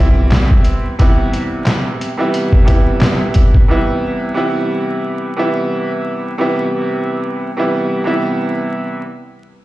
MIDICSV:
0, 0, Header, 1, 4, 480
1, 0, Start_track
1, 0, Key_signature, 0, "major"
1, 0, Tempo, 674157
1, 708, Time_signature, 4, 2, 24, 8
1, 6869, End_track
2, 0, Start_track
2, 0, Title_t, "Grand piano"
2, 0, Program_c, 0, 0
2, 0, Note_on_c, 0, 52, 78
2, 0, Note_on_c, 0, 55, 78
2, 0, Note_on_c, 0, 59, 80
2, 0, Note_on_c, 0, 60, 91
2, 0, Note_on_c, 0, 64, 108
2, 652, Note_off_c, 0, 60, 0
2, 654, Note_off_c, 0, 52, 0
2, 657, Note_off_c, 0, 55, 0
2, 659, Note_off_c, 0, 59, 0
2, 662, Note_off_c, 0, 64, 0
2, 703, Note_on_c, 0, 48, 100
2, 708, Note_on_c, 0, 52, 84
2, 714, Note_on_c, 0, 55, 84
2, 719, Note_on_c, 0, 59, 86
2, 724, Note_on_c, 0, 64, 98
2, 1484, Note_off_c, 0, 48, 0
2, 1486, Note_off_c, 0, 52, 0
2, 1489, Note_off_c, 0, 55, 0
2, 1491, Note_off_c, 0, 59, 0
2, 1494, Note_off_c, 0, 64, 0
2, 1547, Note_on_c, 0, 48, 90
2, 1552, Note_on_c, 0, 52, 93
2, 1557, Note_on_c, 0, 55, 91
2, 1562, Note_on_c, 0, 59, 84
2, 1567, Note_on_c, 0, 64, 94
2, 1875, Note_off_c, 0, 48, 0
2, 1878, Note_off_c, 0, 52, 0
2, 1881, Note_off_c, 0, 55, 0
2, 1883, Note_off_c, 0, 59, 0
2, 1886, Note_off_c, 0, 64, 0
2, 1886, Note_on_c, 0, 48, 88
2, 1890, Note_on_c, 0, 52, 84
2, 1895, Note_on_c, 0, 55, 85
2, 1900, Note_on_c, 0, 59, 83
2, 1905, Note_on_c, 0, 64, 96
2, 2565, Note_off_c, 0, 48, 0
2, 2567, Note_off_c, 0, 52, 0
2, 2570, Note_off_c, 0, 55, 0
2, 2572, Note_off_c, 0, 59, 0
2, 2575, Note_off_c, 0, 64, 0
2, 2621, Note_on_c, 0, 48, 91
2, 2626, Note_on_c, 0, 52, 88
2, 2631, Note_on_c, 0, 55, 81
2, 2636, Note_on_c, 0, 59, 88
2, 2641, Note_on_c, 0, 64, 102
2, 3070, Note_off_c, 0, 48, 0
2, 3072, Note_off_c, 0, 52, 0
2, 3075, Note_off_c, 0, 55, 0
2, 3077, Note_off_c, 0, 59, 0
2, 3080, Note_off_c, 0, 64, 0
2, 3091, Note_on_c, 0, 48, 92
2, 3096, Note_on_c, 0, 52, 87
2, 3101, Note_on_c, 0, 55, 83
2, 3106, Note_on_c, 0, 59, 82
2, 3111, Note_on_c, 0, 64, 102
2, 3768, Note_off_c, 0, 48, 0
2, 3770, Note_off_c, 0, 52, 0
2, 3772, Note_off_c, 0, 55, 0
2, 3775, Note_off_c, 0, 59, 0
2, 3777, Note_off_c, 0, 64, 0
2, 3820, Note_on_c, 0, 48, 87
2, 3825, Note_on_c, 0, 52, 82
2, 3830, Note_on_c, 0, 55, 77
2, 3835, Note_on_c, 0, 59, 79
2, 3839, Note_on_c, 0, 64, 107
2, 4492, Note_off_c, 0, 48, 0
2, 4494, Note_off_c, 0, 52, 0
2, 4497, Note_off_c, 0, 55, 0
2, 4499, Note_off_c, 0, 59, 0
2, 4502, Note_off_c, 0, 64, 0
2, 4544, Note_on_c, 0, 48, 99
2, 4549, Note_on_c, 0, 52, 85
2, 4554, Note_on_c, 0, 55, 83
2, 4559, Note_on_c, 0, 59, 89
2, 4564, Note_on_c, 0, 64, 101
2, 5324, Note_off_c, 0, 48, 0
2, 5327, Note_off_c, 0, 52, 0
2, 5329, Note_off_c, 0, 55, 0
2, 5332, Note_off_c, 0, 59, 0
2, 5334, Note_off_c, 0, 64, 0
2, 5388, Note_on_c, 0, 48, 87
2, 5393, Note_on_c, 0, 52, 89
2, 5398, Note_on_c, 0, 55, 84
2, 5403, Note_on_c, 0, 59, 81
2, 5408, Note_on_c, 0, 64, 96
2, 5715, Note_off_c, 0, 48, 0
2, 5718, Note_off_c, 0, 52, 0
2, 5721, Note_off_c, 0, 55, 0
2, 5723, Note_off_c, 0, 59, 0
2, 5726, Note_off_c, 0, 64, 0
2, 5726, Note_on_c, 0, 48, 88
2, 5731, Note_on_c, 0, 52, 80
2, 5736, Note_on_c, 0, 55, 79
2, 5741, Note_on_c, 0, 59, 78
2, 5746, Note_on_c, 0, 64, 98
2, 6405, Note_off_c, 0, 48, 0
2, 6408, Note_off_c, 0, 52, 0
2, 6410, Note_off_c, 0, 55, 0
2, 6413, Note_off_c, 0, 59, 0
2, 6415, Note_off_c, 0, 64, 0
2, 6869, End_track
3, 0, Start_track
3, 0, Title_t, "Sub bass"
3, 0, Program_c, 1, 38
3, 0, Note_on_c, 1, 35, 92
3, 281, Note_off_c, 1, 35, 0
3, 6869, End_track
4, 0, Start_track
4, 0, Title_t, "Drums"
4, 223, Note_on_c, 9, 39, 94
4, 228, Note_on_c, 9, 38, 120
4, 239, Note_on_c, 9, 42, 89
4, 294, Note_off_c, 9, 39, 0
4, 299, Note_off_c, 9, 38, 0
4, 310, Note_off_c, 9, 42, 0
4, 361, Note_on_c, 9, 36, 99
4, 432, Note_off_c, 9, 36, 0
4, 459, Note_on_c, 9, 42, 76
4, 530, Note_off_c, 9, 42, 0
4, 708, Note_on_c, 9, 42, 83
4, 710, Note_on_c, 9, 36, 103
4, 779, Note_off_c, 9, 42, 0
4, 781, Note_off_c, 9, 36, 0
4, 950, Note_on_c, 9, 42, 66
4, 1021, Note_off_c, 9, 42, 0
4, 1182, Note_on_c, 9, 39, 94
4, 1187, Note_on_c, 9, 38, 112
4, 1187, Note_on_c, 9, 42, 88
4, 1253, Note_off_c, 9, 39, 0
4, 1258, Note_off_c, 9, 38, 0
4, 1259, Note_off_c, 9, 42, 0
4, 1433, Note_on_c, 9, 42, 73
4, 1504, Note_off_c, 9, 42, 0
4, 1666, Note_on_c, 9, 42, 97
4, 1737, Note_off_c, 9, 42, 0
4, 1799, Note_on_c, 9, 36, 103
4, 1870, Note_off_c, 9, 36, 0
4, 1906, Note_on_c, 9, 42, 74
4, 1911, Note_on_c, 9, 36, 98
4, 1977, Note_off_c, 9, 42, 0
4, 1982, Note_off_c, 9, 36, 0
4, 2142, Note_on_c, 9, 39, 93
4, 2147, Note_on_c, 9, 38, 118
4, 2158, Note_on_c, 9, 42, 87
4, 2213, Note_off_c, 9, 39, 0
4, 2218, Note_off_c, 9, 38, 0
4, 2229, Note_off_c, 9, 42, 0
4, 2379, Note_on_c, 9, 42, 77
4, 2391, Note_on_c, 9, 36, 92
4, 2450, Note_off_c, 9, 42, 0
4, 2462, Note_off_c, 9, 36, 0
4, 2523, Note_on_c, 9, 36, 89
4, 2595, Note_off_c, 9, 36, 0
4, 6869, End_track
0, 0, End_of_file